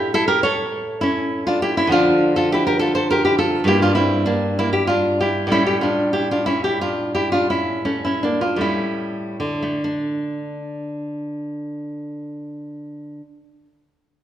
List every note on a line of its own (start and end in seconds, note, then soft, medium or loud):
0.00 1.84 A2 medium
0.00 1.84 G3 medium
0.00 1.85 A3 medium
0.00 0.12 E4 medium
0.00 0.12 G4 medium
0.14 0.28 E4 medium
0.14 0.27 A4 loud
0.28 0.42 G4 medium
0.28 0.43 A#4 medium
0.43 0.99 A4 medium
0.43 1.00 C#5 loud
1.01 1.44 C#4 medium
1.01 1.44 E4 medium
1.47 1.61 D4 medium
1.47 1.61 F4 medium
1.62 1.76 E4 medium
1.62 1.76 G4 medium
1.77 1.91 C#4 medium
1.77 1.91 E4 medium
1.87 3.60 D3 medium
1.87 3.61 F3 medium
1.87 3.62 A3 soft
1.92 2.33 D4 medium
1.92 2.34 F4 medium
2.36 2.50 F4 medium
2.36 2.50 A4 medium
2.52 2.65 E4 medium
2.52 2.65 G4 medium
2.67 2.80 G4 medium
2.67 2.79 A#4 medium
2.79 2.94 F4 medium
2.79 2.94 A4 medium
2.95 3.09 A4 medium
2.95 3.09 C5 medium
3.10 3.23 G4 medium
3.10 3.24 A#4 medium
3.25 3.38 E4 medium
3.25 3.38 G4 medium
3.39 3.65 F4 medium
3.39 3.66 A4 medium
3.64 5.46 G2 medium
3.64 5.46 G3 medium
3.64 4.26 A#3 soft
3.64 3.82 G4 medium
3.68 3.81 E4 medium
3.82 3.96 D4 medium
3.82 3.94 F4 medium
3.95 4.25 C4 medium
3.95 4.25 E4 medium
4.26 4.56 A#3 medium
4.26 4.56 D4 medium
4.59 4.73 A#3 medium
4.59 4.72 E4 medium
4.73 4.88 E4 medium
4.73 4.87 G4 medium
4.87 5.18 D4 medium
4.87 5.18 F4 medium
5.21 5.50 E4 medium
5.21 5.50 G4 medium
5.47 8.55 A2 medium
5.47 8.56 G3 soft
5.47 7.84 A3 soft
5.52 5.67 C#4 medium
5.52 5.66 E4 medium
5.67 5.82 E4 medium
5.67 5.81 G4 medium
5.81 6.13 D4 medium
5.81 6.13 F4 medium
6.13 6.30 E4 medium
6.13 6.30 G4 medium
6.31 6.47 D4 medium
6.31 6.45 F4 medium
6.46 6.63 C#4 medium
6.46 6.64 E4 medium
6.64 6.81 E4 medium
6.64 6.81 G4 medium
6.81 7.14 D4 medium
6.81 7.14 F4 medium
7.15 7.32 E4 medium
7.15 7.31 G4 medium
7.32 7.50 D4 soft
7.32 7.50 F4 medium
7.50 7.84 C#4 medium
7.50 7.85 E4 medium
7.85 8.03 A3 soft
7.85 8.04 C#4 medium
8.05 8.23 C#4 soft
8.05 8.23 E4 medium
8.23 8.41 A#3 soft
8.23 8.42 D4 medium
8.41 8.60 D4 soft
8.41 8.60 F4 medium
8.56 9.78 A2 medium
8.56 9.39 G3 soft
8.56 9.61 A3 soft
8.61 9.80 C#4 soft
8.61 9.80 E4 medium
9.40 13.20 D3 medium
9.62 13.43 A3 soft
9.84 13.65 D4 medium